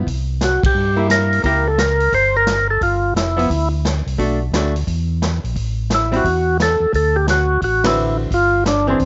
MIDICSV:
0, 0, Header, 1, 5, 480
1, 0, Start_track
1, 0, Tempo, 343249
1, 89, Time_signature, 4, 2, 24, 8
1, 12657, End_track
2, 0, Start_track
2, 0, Title_t, "Tonewheel organ"
2, 0, Program_c, 0, 16
2, 615, Note_on_c, 0, 66, 67
2, 882, Note_off_c, 0, 66, 0
2, 924, Note_on_c, 0, 67, 68
2, 1507, Note_off_c, 0, 67, 0
2, 1556, Note_on_c, 0, 70, 71
2, 1989, Note_off_c, 0, 70, 0
2, 2041, Note_on_c, 0, 70, 80
2, 2344, Note_off_c, 0, 70, 0
2, 2344, Note_on_c, 0, 69, 79
2, 2505, Note_off_c, 0, 69, 0
2, 2505, Note_on_c, 0, 70, 89
2, 2990, Note_off_c, 0, 70, 0
2, 3000, Note_on_c, 0, 72, 94
2, 3303, Note_off_c, 0, 72, 0
2, 3308, Note_on_c, 0, 70, 100
2, 3741, Note_off_c, 0, 70, 0
2, 3783, Note_on_c, 0, 69, 75
2, 3944, Note_off_c, 0, 69, 0
2, 3955, Note_on_c, 0, 65, 71
2, 4388, Note_off_c, 0, 65, 0
2, 4430, Note_on_c, 0, 64, 65
2, 5155, Note_off_c, 0, 64, 0
2, 8315, Note_on_c, 0, 64, 83
2, 8600, Note_off_c, 0, 64, 0
2, 8619, Note_on_c, 0, 66, 81
2, 9194, Note_off_c, 0, 66, 0
2, 9261, Note_on_c, 0, 69, 87
2, 9682, Note_off_c, 0, 69, 0
2, 9726, Note_on_c, 0, 69, 83
2, 10013, Note_on_c, 0, 67, 81
2, 10026, Note_off_c, 0, 69, 0
2, 10163, Note_off_c, 0, 67, 0
2, 10215, Note_on_c, 0, 66, 86
2, 10639, Note_off_c, 0, 66, 0
2, 10687, Note_on_c, 0, 66, 90
2, 10986, Note_off_c, 0, 66, 0
2, 11007, Note_on_c, 0, 64, 79
2, 11430, Note_off_c, 0, 64, 0
2, 11663, Note_on_c, 0, 65, 87
2, 12083, Note_off_c, 0, 65, 0
2, 12133, Note_on_c, 0, 62, 83
2, 12409, Note_off_c, 0, 62, 0
2, 12450, Note_on_c, 0, 60, 81
2, 12657, Note_off_c, 0, 60, 0
2, 12657, End_track
3, 0, Start_track
3, 0, Title_t, "Hollow-body jazz guitar"
3, 0, Program_c, 1, 26
3, 1349, Note_on_c, 1, 58, 54
3, 1355, Note_on_c, 1, 64, 66
3, 1969, Note_off_c, 1, 58, 0
3, 1972, Note_off_c, 1, 64, 0
3, 2007, Note_on_c, 1, 58, 51
3, 2032, Note_on_c, 1, 64, 49
3, 2033, Note_on_c, 1, 67, 59
3, 2287, Note_off_c, 1, 58, 0
3, 2300, Note_off_c, 1, 64, 0
3, 2300, Note_off_c, 1, 67, 0
3, 4707, Note_on_c, 1, 53, 62
3, 4720, Note_on_c, 1, 59, 63
3, 4723, Note_on_c, 1, 64, 63
3, 4865, Note_off_c, 1, 53, 0
3, 4871, Note_off_c, 1, 59, 0
3, 4873, Note_off_c, 1, 64, 0
3, 5850, Note_on_c, 1, 57, 45
3, 5860, Note_on_c, 1, 62, 54
3, 5865, Note_on_c, 1, 66, 53
3, 6128, Note_off_c, 1, 57, 0
3, 6133, Note_off_c, 1, 62, 0
3, 6136, Note_off_c, 1, 66, 0
3, 6349, Note_on_c, 1, 62, 56
3, 6351, Note_on_c, 1, 57, 51
3, 6365, Note_on_c, 1, 66, 54
3, 6618, Note_off_c, 1, 62, 0
3, 6619, Note_off_c, 1, 57, 0
3, 6625, Note_off_c, 1, 66, 0
3, 8553, Note_on_c, 1, 55, 54
3, 8564, Note_on_c, 1, 60, 59
3, 8570, Note_on_c, 1, 64, 63
3, 8708, Note_off_c, 1, 55, 0
3, 8713, Note_off_c, 1, 60, 0
3, 8716, Note_off_c, 1, 64, 0
3, 10965, Note_on_c, 1, 50, 49
3, 10969, Note_on_c, 1, 60, 55
3, 10975, Note_on_c, 1, 66, 58
3, 10981, Note_on_c, 1, 71, 54
3, 11577, Note_off_c, 1, 50, 0
3, 11579, Note_off_c, 1, 60, 0
3, 11582, Note_off_c, 1, 66, 0
3, 11584, Note_off_c, 1, 71, 0
3, 12407, Note_on_c, 1, 52, 59
3, 12413, Note_on_c, 1, 60, 54
3, 12425, Note_on_c, 1, 62, 59
3, 12427, Note_on_c, 1, 68, 57
3, 12554, Note_off_c, 1, 52, 0
3, 12557, Note_off_c, 1, 60, 0
3, 12563, Note_off_c, 1, 62, 0
3, 12564, Note_off_c, 1, 68, 0
3, 12657, End_track
4, 0, Start_track
4, 0, Title_t, "Tonewheel organ"
4, 0, Program_c, 2, 16
4, 100, Note_on_c, 2, 36, 76
4, 830, Note_off_c, 2, 36, 0
4, 885, Note_on_c, 2, 36, 32
4, 968, Note_off_c, 2, 36, 0
4, 1044, Note_on_c, 2, 43, 77
4, 1958, Note_off_c, 2, 43, 0
4, 2015, Note_on_c, 2, 37, 73
4, 2923, Note_off_c, 2, 37, 0
4, 2973, Note_on_c, 2, 31, 72
4, 3882, Note_off_c, 2, 31, 0
4, 3935, Note_on_c, 2, 31, 79
4, 4378, Note_off_c, 2, 31, 0
4, 4403, Note_on_c, 2, 29, 64
4, 4851, Note_off_c, 2, 29, 0
4, 4901, Note_on_c, 2, 38, 82
4, 5630, Note_off_c, 2, 38, 0
4, 5682, Note_on_c, 2, 36, 61
4, 5837, Note_off_c, 2, 36, 0
4, 5855, Note_on_c, 2, 35, 73
4, 6297, Note_off_c, 2, 35, 0
4, 6318, Note_on_c, 2, 38, 63
4, 6768, Note_off_c, 2, 38, 0
4, 6817, Note_on_c, 2, 40, 81
4, 7548, Note_off_c, 2, 40, 0
4, 7604, Note_on_c, 2, 34, 57
4, 7758, Note_off_c, 2, 34, 0
4, 7775, Note_on_c, 2, 33, 81
4, 8683, Note_off_c, 2, 33, 0
4, 8727, Note_on_c, 2, 40, 73
4, 9462, Note_off_c, 2, 40, 0
4, 9512, Note_on_c, 2, 40, 33
4, 9598, Note_off_c, 2, 40, 0
4, 9687, Note_on_c, 2, 38, 85
4, 10599, Note_off_c, 2, 38, 0
4, 10656, Note_on_c, 2, 33, 71
4, 11563, Note_off_c, 2, 33, 0
4, 11623, Note_on_c, 2, 31, 76
4, 12527, Note_off_c, 2, 31, 0
4, 12578, Note_on_c, 2, 40, 78
4, 12657, Note_off_c, 2, 40, 0
4, 12657, End_track
5, 0, Start_track
5, 0, Title_t, "Drums"
5, 95, Note_on_c, 9, 36, 30
5, 106, Note_on_c, 9, 46, 40
5, 235, Note_off_c, 9, 36, 0
5, 246, Note_off_c, 9, 46, 0
5, 572, Note_on_c, 9, 38, 58
5, 575, Note_on_c, 9, 42, 49
5, 712, Note_off_c, 9, 38, 0
5, 715, Note_off_c, 9, 42, 0
5, 887, Note_on_c, 9, 36, 69
5, 899, Note_on_c, 9, 51, 64
5, 1027, Note_off_c, 9, 36, 0
5, 1039, Note_off_c, 9, 51, 0
5, 1533, Note_on_c, 9, 38, 56
5, 1536, Note_on_c, 9, 42, 48
5, 1673, Note_off_c, 9, 38, 0
5, 1676, Note_off_c, 9, 42, 0
5, 1854, Note_on_c, 9, 46, 34
5, 1994, Note_off_c, 9, 46, 0
5, 2009, Note_on_c, 9, 46, 35
5, 2011, Note_on_c, 9, 36, 30
5, 2149, Note_off_c, 9, 46, 0
5, 2151, Note_off_c, 9, 36, 0
5, 2492, Note_on_c, 9, 38, 60
5, 2495, Note_on_c, 9, 42, 49
5, 2632, Note_off_c, 9, 38, 0
5, 2635, Note_off_c, 9, 42, 0
5, 2799, Note_on_c, 9, 46, 36
5, 2938, Note_off_c, 9, 46, 0
5, 2971, Note_on_c, 9, 36, 26
5, 2974, Note_on_c, 9, 46, 36
5, 3111, Note_off_c, 9, 36, 0
5, 3114, Note_off_c, 9, 46, 0
5, 3449, Note_on_c, 9, 38, 58
5, 3451, Note_on_c, 9, 42, 47
5, 3588, Note_off_c, 9, 38, 0
5, 3591, Note_off_c, 9, 42, 0
5, 3933, Note_on_c, 9, 36, 31
5, 3936, Note_on_c, 9, 46, 37
5, 4073, Note_off_c, 9, 36, 0
5, 4076, Note_off_c, 9, 46, 0
5, 4424, Note_on_c, 9, 38, 61
5, 4427, Note_on_c, 9, 42, 52
5, 4564, Note_off_c, 9, 38, 0
5, 4566, Note_off_c, 9, 42, 0
5, 4739, Note_on_c, 9, 46, 36
5, 4878, Note_off_c, 9, 46, 0
5, 4895, Note_on_c, 9, 36, 29
5, 4904, Note_on_c, 9, 46, 42
5, 5035, Note_off_c, 9, 36, 0
5, 5044, Note_off_c, 9, 46, 0
5, 5383, Note_on_c, 9, 38, 61
5, 5386, Note_on_c, 9, 42, 49
5, 5523, Note_off_c, 9, 38, 0
5, 5526, Note_off_c, 9, 42, 0
5, 5696, Note_on_c, 9, 46, 33
5, 5836, Note_off_c, 9, 46, 0
5, 5853, Note_on_c, 9, 36, 29
5, 5863, Note_on_c, 9, 46, 39
5, 5993, Note_off_c, 9, 36, 0
5, 6003, Note_off_c, 9, 46, 0
5, 6341, Note_on_c, 9, 38, 61
5, 6344, Note_on_c, 9, 42, 50
5, 6481, Note_off_c, 9, 38, 0
5, 6484, Note_off_c, 9, 42, 0
5, 6653, Note_on_c, 9, 46, 36
5, 6793, Note_off_c, 9, 46, 0
5, 6814, Note_on_c, 9, 36, 29
5, 6819, Note_on_c, 9, 46, 41
5, 6953, Note_off_c, 9, 36, 0
5, 6958, Note_off_c, 9, 46, 0
5, 7301, Note_on_c, 9, 38, 57
5, 7304, Note_on_c, 9, 42, 45
5, 7441, Note_off_c, 9, 38, 0
5, 7444, Note_off_c, 9, 42, 0
5, 7614, Note_on_c, 9, 46, 32
5, 7754, Note_off_c, 9, 46, 0
5, 7772, Note_on_c, 9, 36, 30
5, 7777, Note_on_c, 9, 46, 41
5, 7912, Note_off_c, 9, 36, 0
5, 7917, Note_off_c, 9, 46, 0
5, 8253, Note_on_c, 9, 38, 61
5, 8256, Note_on_c, 9, 42, 53
5, 8393, Note_off_c, 9, 38, 0
5, 8395, Note_off_c, 9, 42, 0
5, 8577, Note_on_c, 9, 46, 33
5, 8717, Note_off_c, 9, 46, 0
5, 8734, Note_on_c, 9, 36, 27
5, 8744, Note_on_c, 9, 46, 41
5, 8874, Note_off_c, 9, 36, 0
5, 8884, Note_off_c, 9, 46, 0
5, 9225, Note_on_c, 9, 38, 63
5, 9228, Note_on_c, 9, 42, 45
5, 9365, Note_off_c, 9, 38, 0
5, 9368, Note_off_c, 9, 42, 0
5, 9695, Note_on_c, 9, 36, 29
5, 9707, Note_on_c, 9, 46, 39
5, 9835, Note_off_c, 9, 36, 0
5, 9847, Note_off_c, 9, 46, 0
5, 10174, Note_on_c, 9, 38, 57
5, 10177, Note_on_c, 9, 42, 51
5, 10314, Note_off_c, 9, 38, 0
5, 10317, Note_off_c, 9, 42, 0
5, 10653, Note_on_c, 9, 36, 28
5, 10656, Note_on_c, 9, 46, 37
5, 10792, Note_off_c, 9, 36, 0
5, 10796, Note_off_c, 9, 46, 0
5, 10964, Note_on_c, 9, 38, 71
5, 10967, Note_on_c, 9, 51, 60
5, 11104, Note_off_c, 9, 38, 0
5, 11107, Note_off_c, 9, 51, 0
5, 11617, Note_on_c, 9, 36, 30
5, 11628, Note_on_c, 9, 46, 41
5, 11757, Note_off_c, 9, 36, 0
5, 11768, Note_off_c, 9, 46, 0
5, 12105, Note_on_c, 9, 38, 60
5, 12108, Note_on_c, 9, 42, 45
5, 12245, Note_off_c, 9, 38, 0
5, 12247, Note_off_c, 9, 42, 0
5, 12579, Note_on_c, 9, 46, 38
5, 12581, Note_on_c, 9, 36, 27
5, 12657, Note_off_c, 9, 36, 0
5, 12657, Note_off_c, 9, 46, 0
5, 12657, End_track
0, 0, End_of_file